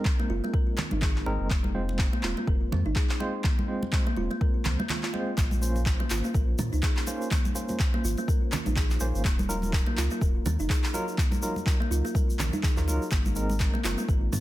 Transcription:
Already playing: G#3 C4 D#4 A#4
0.05 kick, clap
0.20 A#3, muted conga
0.29 F#1 F4
0.44 A#3, muted conga
0.54 A#4, kick, high conga
0.77 C4, clap, muted conga, low conga
0.91 G#1 D#4, high conga
1.02 G#4, kick, clap, muted conga, low conga
1.16 clap
1.26 G#1 G#3 C4 D#4 A#4, muted conga
1.40 F#1
1.50 F1 A#3, kick, clap, muted conga
1.64 high conga
1.75 G#3 C4 F4 C5
1.89 muted conga, high conga
1.99 kick, clap
2.13 A#3, muted conga
2.23 D#1 F4, clap
2.37 A#3, muted conga
2.47 F1 A#4, kick
2.72 F2 C4, muted conga, high conga, low conga
2.86 G#1 D#4
2.96 G#4, kick, clap, muted conga
3.09 clap
3.20 G#3 C4 F4 C5, muted conga
3.44 A#3, kick, clap, muted conga, low conga
3.59 high conga
3.68 G#3 C4 F4 C5
3.83 muted conga, high conga
3.93 kick, clap
4.07 A#3, muted conga
4.16 D#1 F4, high conga
4.31 A#3, muted conga
4.41 A#4, kick, high conga
4.65 C2 C4, clap, muted conga, low conga
4.79 A#3, high conga
4.89 F4, clap, muted conga, low conga
5.03 F4, clap
5.13 G#3 C4 F4 C5, muted conga
5.38 A#1 A#3, kick, clap, muted conga, shaker
5.51 high conga, shaker
5.62 A#3 C#4 F4 C5, shaker
5.76 muted conga, high conga, shaker
5.86 kick, clap, shaker
6.00 A#3, muted conga
6.10 G#1 F4, clap, shaker
6.24 A#3, muted conga, shaker
6.34 A#1 A#4, kick, shaker
6.59 A#2 C#4, muted conga, high conga, low conga, shaker
6.73 C#2 D#4, shaker
6.83 G#4, kick, clap, muted conga, shaker
6.97 clap, shaker
7.07 A#3 C#4 F4 C5, muted conga, shaker
7.22 shaker
7.31 A#3, kick, clap, muted conga, low conga, shaker
7.45 high conga, shaker
7.55 A#3 C#4 F4 C5, shaker
7.68 muted conga, high conga, shaker
7.80 kick, clap, shaker
7.94 A#3, muted conga
8.04 G#1 F4, shaker
8.17 A#3, muted conga, shaker
8.28 A#4, kick, high conga, shaker
8.52 C#4, clap, muted conga, low conga, shaker
8.66 A#1 D#4, high conga, shaker
8.76 G#4, kick, clap, muted conga, low conga, shaker
8.90 clap, shaker
9.00 A#1 A#3 C#4 F4 C5, muted conga, shaker
9.14 G#1, shaker
9.25 D#1 A#3, kick, clap, muted conga, shaker
9.39 high conga, shaker
9.49 F#3 D#4 F4 A#4, shaker
9.62 muted conga, high conga, shaker
9.73 kick, clap, shaker
9.86 A#3, muted conga
9.97 C#2 F4, clap, shaker
10.10 A#3, muted conga, shaker
10.21 D#1 A#4, kick, shaker
10.46 D#2 C#4, muted conga, high conga, low conga, shaker
10.60 F#1 D#4, shaker
10.70 G#4, kick, clap, muted conga, shaker
10.84 clap, shaker
10.94 F#3 D#4 F4 A#4, muted conga, shaker
11.08 shaker
11.18 A#3, kick, clap, muted conga, low conga, shaker
11.32 high conga, shaker
11.42 F#3 D#4 F4 A#4, shaker
11.56 muted conga, high conga, shaker
11.66 kick, clap, shaker
11.80 A#3, muted conga
11.91 C#2 F4, shaker
12.05 A#3, muted conga, shaker
12.15 A#4, kick, high conga, shaker
12.30 shaker
12.39 A#1 C#4, clap, muted conga, low conga, shaker
12.53 D#4, high conga, shaker
12.63 G#4, kick, clap, muted conga, low conga, shaker
12.77 D#2 F#3 D#4 F4 A#4, clap, shaker
12.87 C#2 F#3 D#4 F4 A#4, muted conga, shaker
13.02 shaker
13.11 G#1 A#3, kick, clap, muted conga, shaker
13.25 high conga, shaker
13.36 G#3 C4 D#4 A#4, shaker
13.50 muted conga, high conga, shaker
13.60 kick, clap, shaker
13.74 A#3, muted conga
13.84 F#1 F4, clap, shaker
13.98 A#3, muted conga, shaker
14.08 G#1 A#4, kick, shaker
14.32 G#2 C4, muted conga, high conga, low conga, shaker

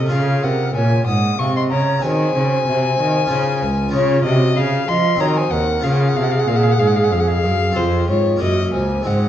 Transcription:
Already playing: C3 A4
0.06 C#4 F4 G#4
0.11 C#3 G#4 F5
0.42 C3 A#4 F#5
0.75 A#2 C#5 G#5
1.07 G#2 F#5 D#6
1.39 C3 F5 C#6
1.55 D#5 C6
1.71 C#3 C#5 A#5
1.99 C4 F#4 G#4 G#5
2.03 D#3 C5
2.36 C#3
2.67 C3
2.99 D#3
3.26 C#4 F4 G#4
3.30 C#3
3.62 C#2
3.89 C#4 F4 G#4 C#5
3.93 C#3 F4
4.24 C3 F#4 D#5
4.56 C#3 G#4 F5
4.88 F3 D#5 C6
5.16 C4 D#4 F#4
5.20 D#3 C#5 A#5
5.37 C5 G#5
5.51 D#2 A#4 F#5
5.80 C#4 F4 G#4
5.84 C#3 G#4 F5
5.92 F#5
6.00 F5
6.09 F#5
6.16 C3 F5
6.23 F#5
6.31 F5
6.39 F#5
6.48 A#2 F5
6.56 F#5
6.63 F5
6.72 F#5
6.79 G#2 F5
6.88 F#5
6.96 F5
7.04 F#5
7.12 F2 F5
7.20 F#5
7.28 F5
7.43 F#2
7.71 C4 F4 G#4
7.76 F2 F4 C5
8.09 G#2 F4 C#5
8.36 A#3 C#4 F#4
8.41 F#2 F#4 D#5
8.73 C#2 C5 G#5
9.02 G#3 C4 D#4 C5
9.06 G#2 F#5

